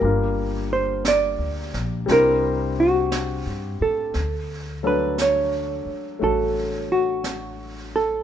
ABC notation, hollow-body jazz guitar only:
X:1
M:4/4
L:1/8
Q:"Swing" 1/4=58
K:D
V:1 name="Hollow-body jazz guitar"
^A =c d2 A F2 =A- | A B c2 A F2 A |]